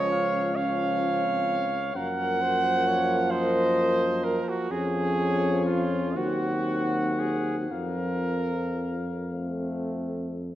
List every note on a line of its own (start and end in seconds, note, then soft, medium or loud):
0.00 1.92 C#2 medium
0.00 0.54 F3 medium
0.00 0.54 C#4 medium
0.00 0.58 C#5 loud
0.00 0.10 D#5 medium
0.11 0.58 F5 medium
0.55 1.65 F3 medium
0.55 1.26 C#4 medium
0.55 1.98 C#5 medium
0.55 1.94 F5 loud
1.25 1.70 C4 medium
1.94 4.39 F#2 medium
1.94 4.67 F3 medium
1.94 4.67 A#3 medium
1.94 2.43 A#4 medium
1.94 3.32 F#5 loud
2.41 2.89 C5 medium
2.87 3.19 C#5 medium
3.31 4.25 C5 loud
3.31 4.41 D#5 medium
4.24 4.51 A#4 medium
4.49 4.73 F#4 medium
4.71 6.17 F2 medium
4.71 6.17 F3 medium
4.71 6.18 C#4 medium
4.71 5.65 G#4 loud
4.71 6.17 C#5 medium
5.65 6.18 F4 medium
6.15 7.70 D#2 medium
6.15 7.69 F#3 medium
6.15 7.71 C4 medium
6.15 7.21 F#4 medium
6.15 7.73 F#5 medium
7.19 7.56 G#4 medium
7.70 10.50 F2 medium
7.70 8.96 F3 medium
7.70 8.97 C4 medium
7.70 9.27 A#4 medium
7.70 10.10 F5 medium
9.30 10.50 A3 medium
9.30 10.51 C4 medium